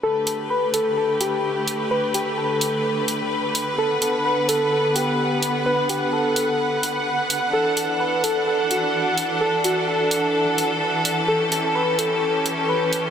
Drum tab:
HH |-o-o-o-o|-o-o-o-o|-o-o-o-o|-o-o-o-o|

HH |-o-o-o-o|-o-o-o-o|-o-o-o-o|